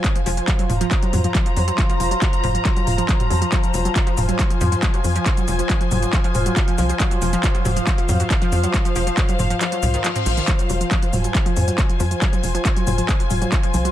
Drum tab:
HH |xxoxxxoxxxoxxxox|xxoxxxoxxxoxxxox|xxoxxxoxxxoxxxox|xxoxxxoxxxoxxxox|
SH |----------------|----------------|xxxxx-xxx-xxx-xx|xxxxx-xxx-xxx-xx|
CP |x---x---x---x---|x---x---x---x---|x---x---x---x---|x---x---x---x---|
T2 |------o---o-----|------o---o--o--|------o---o-----|------o---o-----|
BD |o---o---o---o---|o---o---o---o---|o---o---o---o---|o---o---o---o---|

HH |xxoxxxoxxxoxxxox|xxoxxxoxxxoxxxox|xxoxxxoxxxoxxxox|xxoxxxoxxxoxxxox|
SH |xxxxx-xxx-xxx-xx|xxxxxxxxx-xxxxxx|xxxxx-xxx-xxx-xx|xxxxx-xxx-xxx-xx|
CP |x---x---x---x---|x---x---x---x---|x---x---x---x---|x---x---x---x---|
T2 |------o---o-----|------o---o--o--|------o---o-----|------o---o-----|
BD |o---o---o---o---|o---o-----------|o---o---o---o---|o---o---o---o---|